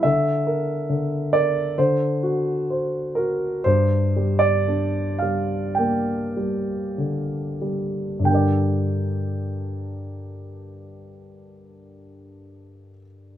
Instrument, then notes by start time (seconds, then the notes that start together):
grand piano
0.03 D3 E5
0.47 A#4
0.89 D3
1.33 A#4 D5
1.78 D3 C5
2.23 F#4
2.70 C5
3.15 F#4 A#4
3.64 G2 C5
4.16 G3
4.39 D5
4.68 D4
5.19 G3 F5
5.75 A#3 G5
6.37 G3
6.98 D3
7.62 G3
8.19 G2 D3
8.25 G3 D4 G5
8.31 A#4 D5